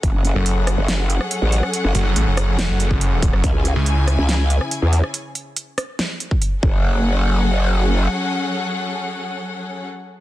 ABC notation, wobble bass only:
X:1
M:4/4
L:1/16
Q:1/4=141
K:F#m
V:1 name="Wobble bass" clef=bass
F,,,3 z4 F,,,4 z2 A,,,2 z | z F,,, z12 z2 | C,,3 z4 C,,4 z2 E,,2 z | z12 z2 F,,,2- |
F,,,12 z4 | z16 |]